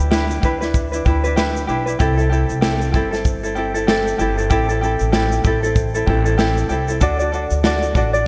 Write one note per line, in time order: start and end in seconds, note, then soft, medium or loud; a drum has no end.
0.00 0.39 D2 medium
0.00 0.10 D4 medium
0.00 0.11 E4 medium
0.00 0.12 B4 medium
0.11 0.41 D4 medium
0.11 0.43 E4 medium
0.11 0.40 G4 medium
0.11 0.44 B4 medium
0.11 snare loud
0.11 shaker medium
0.30 shaker soft
0.30 shaker medium
0.42 1.02 D2 medium
0.42 0.62 D4 medium
0.42 0.61 E4 medium
0.42 0.61 G4 medium
0.42 0.59 B4 medium
0.42 kick medium
0.42 shaker soft
0.61 0.94 D4 soft
0.61 0.92 E4 medium
0.61 0.90 B4 medium
0.61 snare soft
0.61 shaker soft
0.74 kick medium
0.74 shaker medium
0.92 1.05 D4 soft
0.92 1.06 E4 medium
0.92 1.05 B4 medium
0.92 shaker medium
0.92 shaker soft
1.05 1.65 D2 medium
1.05 1.25 D4 medium
1.05 1.24 E4 medium
1.05 1.24 G4 medium
1.05 1.22 B4 medium
1.05 kick medium
1.05 shaker soft
1.24 1.36 D4 soft
1.24 1.36 E4 medium
1.24 1.37 B4 medium
1.24 shaker soft
1.36 1.67 D4 medium
1.36 1.68 E4 medium
1.36 1.66 G4 medium
1.36 1.69 B4 medium
1.36 snare medium
1.36 shaker medium
1.56 shaker soft
1.67 1.97 B1 medium
1.67 1.87 D4 medium
1.67 1.86 E4 medium
1.67 1.87 G4 medium
1.67 1.85 B4 medium
1.67 shaker soft
1.86 1.99 E4 medium
1.86 1.99 B4 soft
1.86 shaker medium
1.89 1.99 D4 soft
1.89 shaker soft
1.99 2.46 C2 loud
1.99 2.19 C4 medium
1.99 2.18 E4 medium
1.99 2.18 G4 medium
1.99 2.16 A4 medium
1.99 kick loud
1.99 shaker medium
2.17 2.30 C4 soft
2.17 2.30 E4 soft
2.17 2.30 A4 medium
2.17 shaker soft
2.17 shaker medium
2.30 2.61 C4 medium
2.30 2.61 E4 medium
2.30 2.60 G4 medium
2.30 2.62 A4 medium
2.30 shaker soft
2.49 2.90 C2 medium
2.49 shaker soft
2.61 2.92 C4 medium
2.61 2.93 E4 medium
2.61 2.91 G4 medium
2.61 2.94 A4 medium
2.61 snare loud
2.61 shaker medium
2.81 shaker soft
2.92 4.15 G1 medium
2.92 3.13 C4 medium
2.92 3.12 E4 medium
2.92 3.12 G4 medium
2.92 3.10 A4 medium
2.92 kick medium
2.92 shaker soft
3.11 3.45 C4 soft
3.11 3.43 E4 soft
3.11 3.42 A4 medium
3.11 snare soft
3.11 shaker soft
3.25 kick medium
3.25 shaker medium
3.43 3.55 C4 soft
3.43 3.56 E4 medium
3.43 3.56 A4 medium
3.43 shaker medium
3.43 shaker soft
3.55 3.75 C4 medium
3.55 3.75 E4 medium
3.55 3.75 G4 medium
3.55 3.73 A4 medium
3.55 shaker soft
3.74 3.87 C4 soft
3.74 3.88 E4 medium
3.74 3.87 A4 medium
3.74 shaker soft
3.87 4.18 C4 medium
3.87 4.19 E4 medium
3.87 4.17 G4 medium
3.87 4.20 A4 medium
3.87 snare medium
3.87 shaker medium
4.07 shaker medium
4.18 4.48 G1 medium
4.18 4.38 C4 medium
4.18 4.38 E4 medium
4.18 4.38 G4 medium
4.18 4.36 A4 medium
4.18 shaker soft
4.37 4.49 C4 soft
4.37 4.50 E4 soft
4.37 4.50 A4 medium
4.37 shaker medium
4.37 shaker soft
4.50 4.97 A1 medium
4.50 4.69 C4 medium
4.50 4.69 E4 medium
4.50 4.69 G4 medium
4.50 4.67 A4 medium
4.50 kick loud
4.50 shaker medium
4.69 4.81 C4 soft
4.69 4.82 E4 medium
4.69 4.82 A4 medium
4.69 shaker soft
4.69 shaker medium
4.81 5.12 C4 medium
4.81 5.13 E4 medium
4.81 5.11 G4 medium
4.81 5.13 A4 medium
4.81 shaker soft
4.99 5.41 A1 medium
4.99 shaker soft
5.01 shaker soft
5.12 5.44 C4 medium
5.12 5.45 E4 medium
5.12 5.43 G4 medium
5.12 5.45 A4 medium
5.12 snare loud
5.12 shaker medium
5.32 shaker soft
5.44 6.03 A1 medium
5.44 5.64 C4 medium
5.44 5.63 E4 medium
5.44 5.63 G4 medium
5.44 5.62 A4 medium
5.44 kick medium
5.44 shaker soft
5.63 5.96 C4 soft
5.63 5.95 E4 soft
5.63 5.93 A4 medium
5.63 shaker soft
5.76 kick medium
5.76 shaker medium
5.95 6.07 C4 soft
5.95 6.08 E4 soft
5.95 6.07 A4 medium
5.95 shaker medium
5.95 shaker soft
6.06 6.66 A1 medium
6.06 6.26 C4 medium
6.06 6.26 E4 medium
6.06 6.26 G4 medium
6.06 6.24 A4 medium
6.06 kick medium
6.25 6.37 C4 soft
6.25 6.38 E4 medium
6.25 6.38 A4 medium
6.25 shaker soft
6.38 6.69 C4 medium
6.38 6.70 E4 medium
6.38 6.68 G4 medium
6.38 6.71 A4 medium
6.38 snare medium
6.38 shaker medium
6.57 shaker medium
6.57 shaker soft
6.69 6.99 C2 medium
6.69 6.89 C4 medium
6.69 6.88 E4 medium
6.69 6.88 G4 medium
6.69 6.87 A4 medium
6.69 shaker soft
6.88 7.02 E4 soft
6.88 6.99 A4 soft
6.88 shaker medium
6.90 7.01 C4 soft
6.90 shaker soft
7.01 7.47 D2 loud
7.01 7.20 D4 medium
7.01 7.20 F#4 medium
7.01 7.20 A4 medium
7.01 7.18 D5 medium
7.01 kick medium
7.01 shaker medium
7.19 7.32 D4 soft
7.19 7.33 F#4 soft
7.19 7.32 D5 medium
7.19 shaker soft
7.19 shaker medium
7.32 7.63 D4 medium
7.32 7.64 F#4 medium
7.32 7.62 A4 medium
7.32 7.65 D5 medium
7.32 shaker soft
7.50 7.92 D2 medium
7.50 shaker soft
7.50 shaker medium
7.63 7.95 D4 medium
7.63 7.95 F#4 medium
7.63 7.93 A4 medium
7.63 7.96 D5 medium
7.63 snare loud
7.63 shaker medium
7.82 shaker soft
7.82 shaker medium
7.94 8.27 A1 medium
7.94 8.14 D4 medium
7.94 8.14 F#4 medium
7.94 8.14 A4 medium
7.94 8.12 D5 medium
7.94 kick medium
7.94 shaker soft
8.13 8.27 D4 soft
8.13 8.27 F#4 soft
8.13 8.27 D5 medium
8.13 shaker soft